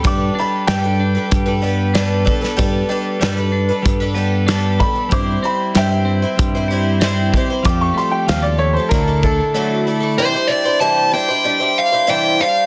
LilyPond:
<<
  \new Staff \with { instrumentName = "Upright piano" } { \time 4/4 \key g \mixolydian \tempo 4 = 95 d'''8 b''8 g''2 r4 | r2. r8 b''8 | d'''8 b''8 <e'' g''>2 r4 | d'''16 cis'''16 c'''16 g''16 f''16 d''16 cis''16 c''16 bes'8 a'4. |
r1 | }
  \new Staff \with { instrumentName = "Lead electric guitar" } { \time 4/4 \key g \mixolydian r1 | r1 | r1 | r1 |
c''8 d''8 a''8 g''4 f''8 g''8 f''8 | }
  \new Staff \with { instrumentName = "Twelve-string acoustic guitar" } { \time 4/4 \key g \mixolydian <g d' a' b'>8 <g d' a' b'>8 <g d' a' b'>16 <d' a' b'>8 <d' a' b'>8 <d' a' b'>16 <g d' a' b'>8 <g d' a' b'>8 <g d' a' b'>16 <d' a' b'>16 | <g d' a' b'>8 <g d' a' b'>8 <g d' a' b'>16 <d' a' b'>8 <d' a' b'>8 <d' a' b'>16 <g d' a' b'>8 <g d' a' b'>8 <g d' a'>16 <d' a' b'>16 | <g c' e' c''>8 <g c' e' c''>8 <g c' e' c''>16 <c' e' c''>8 <c' e' c''>8 <c' e' c''>16 <g c' e' c''>8 <g c' e' c''>8 <g c' e' c''>16 <c' e' c''>16 | <f g c' g' a'>8 <g c' g' a'>8 <f g c' g' a'>16 <c' g' a'>8 <c' g' a'>16 <d fis a d' e' a'>16 <a d' e' a'>16 <a d' e' a'>8 <d fis a d' e' a'>8 <a d' e' a'>16 <a d' e' a'>16 |
<c e g d' e' c''>16 <g d' e' c''>16 <g d' e' c''>16 <g d' e' c''>16 <c e g d' e' c''>8 <g d' e' c''>16 <g d' e' c''>16 <g d' e' c''>16 <g d' e' c''>8 <g d' e' c''>16 <c e g d' e' c''>8 <g d' c''>8 | }
  \new Staff \with { instrumentName = "Clean electric guitar" } { \time 4/4 \key g \mixolydian g8 d'8 g8 d'8 g8 b8 d'8 a'8 | g8 d'8 g8 d'8 g8 b8 d'8 a'8 | g8 c'8 g8 c'8 g8 e'8 c'8 g'8 | f8 a8 f8 a8 d8 d'8 a8 e'8 |
r1 | }
  \new Staff \with { instrumentName = "Fingered electric bass" } { \clef bass \time 4/4 \key g \mixolydian g,8 r8 g,4 g,2 | g,8 r8 g,4 g,2 | g,8 r8 g,4 g,2 | f,8 r8 ees,4 d,4 r4 |
r1 | }
  \new DrumStaff \with { instrumentName = "Drums" } \drummode { \time 4/4 <hh bd>4 <hh sn>4 <hh bd>4 <hh sn>8 bd16 sn16 | <hh bd>4 <hh sn>4 <hh bd>4 <hh sn>8 bd8 | <hh bd>4 <hh sn>4 <hh bd>4 <hh sn>8 bd8 | <hh bd>4 <hh sn>4 <hh bd>8 bd8 r4 |
r4 r4 r4 r4 | }
>>